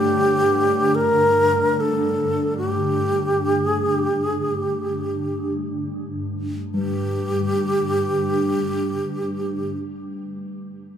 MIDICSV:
0, 0, Header, 1, 4, 480
1, 0, Start_track
1, 0, Key_signature, -2, "minor"
1, 0, Tempo, 500000
1, 10536, End_track
2, 0, Start_track
2, 0, Title_t, "Xiao"
2, 0, Program_c, 0, 77
2, 0, Note_on_c, 0, 67, 86
2, 912, Note_on_c, 0, 70, 95
2, 927, Note_off_c, 0, 67, 0
2, 1730, Note_on_c, 0, 69, 74
2, 1745, Note_off_c, 0, 70, 0
2, 2466, Note_off_c, 0, 69, 0
2, 2473, Note_on_c, 0, 67, 70
2, 3481, Note_off_c, 0, 67, 0
2, 3481, Note_on_c, 0, 68, 70
2, 3750, Note_off_c, 0, 68, 0
2, 3750, Note_on_c, 0, 67, 70
2, 4048, Note_off_c, 0, 67, 0
2, 4048, Note_on_c, 0, 68, 70
2, 4317, Note_off_c, 0, 68, 0
2, 4317, Note_on_c, 0, 67, 70
2, 5315, Note_off_c, 0, 67, 0
2, 6479, Note_on_c, 0, 67, 59
2, 9380, Note_off_c, 0, 67, 0
2, 10536, End_track
3, 0, Start_track
3, 0, Title_t, "Singing bowl"
3, 0, Program_c, 1, 14
3, 0, Note_on_c, 1, 57, 58
3, 6471, Note_on_c, 1, 55, 49
3, 6870, Note_off_c, 1, 57, 0
3, 9371, Note_off_c, 1, 55, 0
3, 10536, End_track
4, 0, Start_track
4, 0, Title_t, "Ambient pad"
4, 0, Program_c, 2, 92
4, 0, Note_on_c, 2, 43, 65
4, 0, Note_on_c, 2, 50, 76
4, 6469, Note_off_c, 2, 43, 0
4, 6475, Note_off_c, 2, 50, 0
4, 6481, Note_on_c, 2, 43, 75
4, 6486, Note_on_c, 2, 50, 72
4, 9381, Note_off_c, 2, 43, 0
4, 9386, Note_off_c, 2, 50, 0
4, 10536, End_track
0, 0, End_of_file